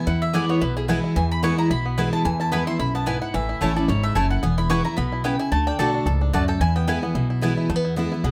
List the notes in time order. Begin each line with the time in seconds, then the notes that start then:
Already playing: B3 E4
0.07 E2 E4 F#5
0.22 E5
0.33 E3 G#3 B3 E4 B4 D5 G#5
0.49 B3 C#5
0.61 B1 B2 E4 B4
0.77 E4 G#4
0.88 E3 G#3 B3 E4 B4 G#5
1.04 E4
1.16 E2 E3 G#5
1.32 B5
1.43 E3 G#3 B3 E4 B4 G#5 C#6
1.58 E4 A#5
1.70 B1 B2 E4 B5
1.85 B3
1.98 E3 G#3 B3 E4 B4 G#5
2.13 E4 A5
2.25 E2 E3 G#5
2.40 E4 A5
2.52 E3 G#3 B3 E4 B4 G#5 B5
2.67 B3 E4 C6
2.79 B1 F#2 E4 B5
2.95 B3 A5
3.06 G#2 B3 E4 B4 G#5
3.22 E4 F#5
3.34 A1 A2 E3 E5
3.49 E4
3.61 A1 E3 A3 C#4 E4 C#5 A5
3.76 C#4 E4 A4 D5
3.88 G#1 G#2 E4 C#5
4.03 A3 E5
4.15 F#1 F#2 A3 E4 A4 C#5 G#5 A5
4.30 E4 F#5
4.43 E1 E2 B3 G#5
4.58 E4 B5
4.70 E3 G#3 B3 E4 B4 G#5 C#6
4.85 B3 E4 A#5
4.97 B1 B2 B3 B5
5.12 E4
5.24 C#3 B3 E4 B4 G5 G#5
5.39 E4 G#5
5.52 D2 D3 A3 A5
5.67 D4 G5
5.79 B1 D3 A3 D4 F#4 A4 D5 A5
5.94 D4
6.06 C#2 G#2 A4
6.21 D4
6.33 D2 F#2 A3 F#4 D5 F#5 A5
6.48 A4 G5
6.60 E2 E4 G#5
6.76 B3 G5
6.87 E3 G#3 B3 E4 B4 G#5
7.02 B3 E4
7.15 B1 B2 E4
7.30 E4
7.41 E3 G#3 B3 E4 B4 G#5
7.57 E4
7.69 E2 A3
7.76 B3
7.85 E4
7.96 E3 G#3 B3 E4
8.12 B3 E4
8.24 B1 B2 B3 G#4